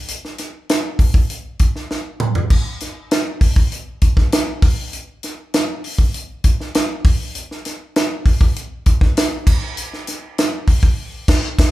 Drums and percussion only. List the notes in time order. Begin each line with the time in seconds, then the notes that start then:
0.08 closed hi-hat
0.25 snare
0.38 snare, closed hi-hat
0.69 snare, closed hi-hat
0.99 kick, open hi-hat
1.14 kick
1.30 closed hi-hat
1.59 kick, closed hi-hat
1.76 snare
1.91 snare
2.20 mid tom
2.35 floor tom
2.50 kick, splash
2.80 snare, closed hi-hat
3.11 snare, closed hi-hat
3.41 kick, open hi-hat
3.56 kick
3.72 closed hi-hat
4.01 kick, closed hi-hat
4.17 kick, snare
4.32 snare, closed hi-hat
4.62 kick, open hi-hat
4.93 closed hi-hat
5.23 snare, closed hi-hat
5.54 snare, closed hi-hat
5.84 open hi-hat
5.98 kick
6.14 closed hi-hat
6.44 kick, closed hi-hat
6.60 snare
6.75 snare, closed hi-hat
7.05 kick, open hi-hat
7.35 closed hi-hat
7.51 snare
7.65 snare, closed hi-hat
7.96 snare, closed hi-hat
8.26 kick, open hi-hat
8.41 kick
8.56 closed hi-hat
8.86 kick, closed hi-hat
9.01 kick, snare
9.17 snare, closed hi-hat
9.47 kick, crash
9.77 closed hi-hat
9.93 snare
10.07 snare, closed hi-hat
10.38 snare, closed hi-hat
10.68 kick, open hi-hat
10.83 kick
11.28 kick, snare, crash
11.59 kick, snare, crash